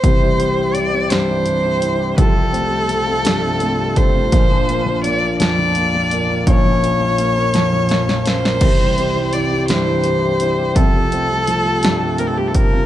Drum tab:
CC |------------|------------|------------|------------|
HH |x-x-x-x-x-x-|x-x-x-x-x-x-|x-x-x-x-x-x-|x-x-x-x-x-x-|
SD |------o-----|------o-----|------o-----|------o-oooo|
BD |o-----------|o---------o-|o-----------|o-----------|

CC |x-----------|------------|
HH |--x-x-x-x-x-|x-x-x-x-x-x-|
SD |------o-----|------o-----|
BD |o-----------|o---------o-|